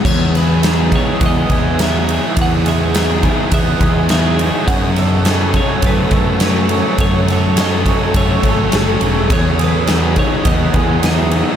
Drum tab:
CC |x-------|--------|--------|--------|
RD |-xxxxxxx|xxxxxxxx|xxxxxxxx|xxxxxxxx|
SD |-oo---o-|-oo---o-|-oo---o-|-oo---o-|
BD |o--ooo--|o--ooo--|o--ooo--|o--ooo--|

CC |--------|
RD |xxxxxxxx|
SD |-oo---o-|
BD |o--ooo--|